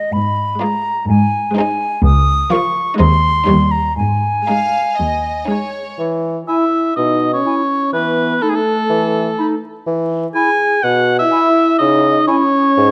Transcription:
Already playing: D#5
0.13 G#2 B5
0.59 G#3 F4 D5 A#5
1.09 G#2 G#5
1.56 G#3 D#4 C5 G#5
2.04 C#2 D#6
2.51 F3 F4 A#4 C#6
2.98 D#2 G#3 D#4 C5 C6
3.47 D#2 G3 D#4 C#5
3.71 A#5
3.97 G#2 G#5
4.48 G#3 D#4 F5
4.98 D#2 D#5
5.48 G#3 D#4 C#5
5.98 E3
6.46 E4 E5 G#5
6.96 B2 D#4 D#5
7.33 C#4 C#5
7.45 E4 G#5
7.93 E3 B3 B4
8.42 A3 D#4 A4 B5
8.49 G#4
8.55 A4
8.90 E3
9.38 D#4 B5
9.87 E3
10.34 E4 G#4 G#5
10.83 B2 F#4 F#5
11.19 E4 E5
11.31 E4 G#5
11.78 C#3 D#4 D#5
12.27 C#4 E4 C#5 G#5
12.77 G#2

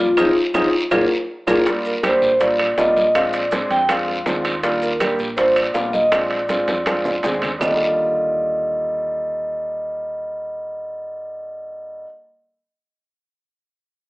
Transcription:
Already playing: F1
0.00 F4
0.17 F2 C4 D#4 F4 G#4, low bongo, high conga, high timbale, long guiro, claves, maracas
0.54 F2 C4 D#4 F4 G#4, low bongo, high conga, high timbale, long guiro, claves, maracas
0.91 A#1 A#3 D4 F4 G#4 A#4, low bongo, high conga, high timbale, long guiro, claves, maracas
1.47 A#1 A#3 D4 F4 G#4 A#4, low bongo, high conga, high timbale, long guiro, claves, maracas
1.66 G3 A#3 D4 F4, high bongo, high timbale, long guiro, maracas
1.85 A#4, high conga, maracas
2.03 G3 A#3 D4 G4 C5, high bongo, high conga, high timbale, short guiro, claves, maracas
2.22 A#1, high bongo, high conga, short guiro, maracas
2.40 G3 A#3 D4 F4 D5, high bongo, high conga, high timbale, long guiro, maracas
2.59 high bongo, high conga, high timbale, claves
2.77 A#1 G3 A#3 D4 F4 D#5, high bongo, low bongo, high conga, low timbale, short guiro, maracas
2.96 high bongo, high conga, short guiro, maracas
3.15 G#3 C4 D4 F4 F5, high bongo, high conga, high timbale, long guiro, claves, maracas
3.33 D5, high conga, high timbale, maracas
3.51 G#3 C4 D4 G#4, high bongo, high conga, high timbale, short guiro, maracas
3.70 F2 G5, high bongo, high conga, high timbale, short guiro, maracas
3.89 G#3 C4 D4 F4 F5, high bongo, high conga, high timbale, long guiro, claves, maracas
4.08 high bongo, high conga
4.26 D#2 G#3 C4 D4 F4, high bongo, low bongo, high conga, high timbale, low timbale, short guiro, maracas
4.45 high bongo, high conga, high timbale, short guiro, claves, maracas
4.63 G3 A#3 D4 F4, high bongo, high conga, high timbale, long guiro, maracas
4.82 A#4, high conga, maracas
5.00 G3 A#3 D4 G4, high bongo, high conga, high timbale, short guiro, claves, maracas
5.19 A#1, high bongo, high conga, short guiro, maracas
5.37 G3 A#3 D4 F4 C5, high bongo, high conga, high timbale, long guiro, maracas
5.56 D5, high bongo, high conga, high timbale, claves, maracas
5.74 A#1 G3 A#3 D4 F4 F5, high bongo, low bongo, high conga, low timbale, short guiro, maracas
5.93 D#5, high bongo, high conga, short guiro, maracas
6.12 G#3 C4 D4 F4 D5, high bongo, high conga, high timbale, long guiro, claves, maracas
6.31 high conga, high timbale
6.49 G#3 C4 D4 F4, high bongo, high conga, high timbale, short guiro, maracas
6.68 F2, high bongo, high conga, high timbale, short guiro, maracas
6.86 G#3 C4 D4 F4, high bongo, high conga, high timbale, long guiro, claves, maracas
7.05 low conga, maracas
7.23 D#2 G#3 C4 D4 G#4, low bongo, low conga, high timbale, low timbale, short guiro, maracas
7.42 low bongo, low conga, high timbale, short guiro, claves, maracas
7.59 D#2 D3 G3 A#3 D#5, low bongo, low conga, low timbale, long guiro, claves, maracas
7.63 F4

